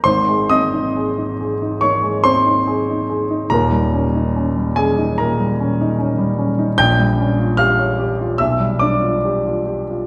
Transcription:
grand piano
0.04 G#1 G#2 C5 C6
0.29 G#3
0.49 C4 D#5 D#6
0.74 D#4
0.97 G#4
1.18 D#4
1.41 G#4
1.62 D#4
1.81 D#3 C#5 C#6
2.03 G#3
2.24 C4 C5 C6
2.46 D#4
2.68 G#4
2.90 D#4
3.09 G#4
3.31 D#4
3.50 D#1 D#2 A#4 A#5
3.72 G3
3.94 C#4
4.15 D#4
4.36 C#4
4.57 G3
4.76 C#4 G#4 G#5
4.98 D#4
5.18 A#2 A#4 A#5
5.40 G3
5.60 C#4
5.81 D#4
5.99 C#4
6.18 G3
6.38 C#4
6.59 D#4
6.78 A#1 G5 G6
6.99 G3
7.20 C#4
7.39 F4
7.57 G4 F5 F6
7.79 C#5
8.00 G4
8.21 F4
8.38 B1 E5 E6
8.60 G3
8.79 D4 D5 D6
9.02 F4
9.25 G4
9.46 F4
9.67 G4
9.91 F4

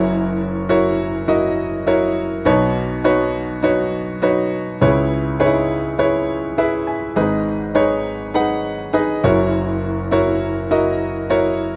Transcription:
grand piano
Already playing: F#1 F#2 E4 F#4 A#4 C#5
0.69 E4 F#4 A#4 C#5
1.28 E4 F#4 A#4 D#5
1.87 E4 F#4 A#4 C#5
2.45 B1 B2 D#4 F#4 B4 C#5
3.04 D#4 F#4 B4 C#5
3.63 D#4 F#4 B4 C#5
4.22 D#4 F#4 B4 C#5
4.81 C#2 C#3 E4 G#4 B4 C#5
5.40 D#4 G#4 B4 C#5
5.46 E4
5.98 E4 G#4 B4 C#5
6.58 E4 G#4 B4 E5
6.87 G#5
7.16 G#1 G#2 D#4 G#4 B4 D#5
7.75 D#4 G#4 B4 C#5
8.34 D#4 G#4 B4 F#5
8.93 D#4 G#4 B4 D#5
9.24 F#1 F#2 E4 F#4 A#4 C#5
10.11 E4 F#4 A#4 C#5
10.71 E4 F#4 A#4 D#5
11.30 E4 F#4 A#4 C#5

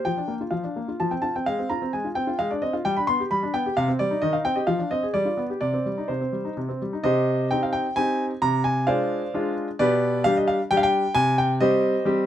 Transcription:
grand piano
0.05 F3 G5
0.17 D4
0.28 A#3
0.41 F4
0.51 F3 F5
0.64 D4
0.76 A#3
0.88 F4
1.00 F3 A5
1.11 C4 G5
1.22 F4 A5
1.36 C4 G5
1.46 G#3 F5
1.59 C4
1.70 F4 A#5
1.82 C4
1.93 G#3 G#5
2.05 F4
2.15 C4 G5
2.27 F4
2.39 G#3 F5
2.51 D4 D5
2.62 C4 D#5
2.73 F4 F5
2.85 G3 G5
2.97 D4 B5
3.07 B3 C6
3.20 G4
3.31 G3 B5
3.43 D4
3.54 B3 G5
3.66 G4
3.77 C3 F5
3.88 C4
3.99 G3 D5
4.11 D#4
4.22 D#3 D#5
4.33 D#4 F5
4.45 C4 G5
4.55 G4 D#5
4.67 F3 F5
4.79 D4
4.91 C4 D#5
5.03 G#4
5.14 G3 D5
5.25 F4
5.37 B3
5.50 G4
5.61 C3 D5
5.74 C4
5.86 G3
5.98 D#4
6.08 C3 C5
6.21 C4
6.32 G3
6.45 D#4
6.57 C3
6.69 C4
6.82 G3
6.93 D#4
7.04 C3 G4 C5 D#5
7.51 C4 D#4 G4 G5
7.63 F5
7.73 G5
7.96 C4 D#4 G4 G#5
8.42 C3 A#5
8.64 G#5
8.87 G#3 D4 F4 C5 D5 F5
9.34 G#3 D4 F4
9.79 B2 G4 B4 D5
10.24 G3 D4 G4 F5
10.37 D#5
10.48 F5
10.71 G3 D4 G4 G5
10.77 F5
10.83 G5
11.15 C3 G#5
11.38 G5
11.60 G3 C4 G4 C5 D#5
12.05 G3 C4 G4

